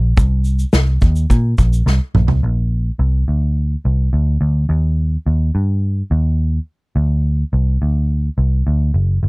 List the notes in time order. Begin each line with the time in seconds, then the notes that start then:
Already playing: A#1
0.17 C2, kick, shaker
0.44 shaker
0.59 shaker
0.73 C2, snare, shaker
1.01 D#2, kick, shaker
1.16 shaker
1.30 A#2, kick, shaker
1.58 A#1, kick, shaker
1.73 shaker
1.86 C2, snare
2.15 A#1, mid tom
2.28 C2, floor tom
2.43 A#1
2.99 C2
3.28 D2
3.85 C2
4.13 D2
4.41 D2
4.69 D#2
5.26 D#2
5.55 G2
6.11 D#2
6.96 D2
7.53 C2
7.82 D2
8.38 C2
8.67 D2
8.94 F#1
9.23 G1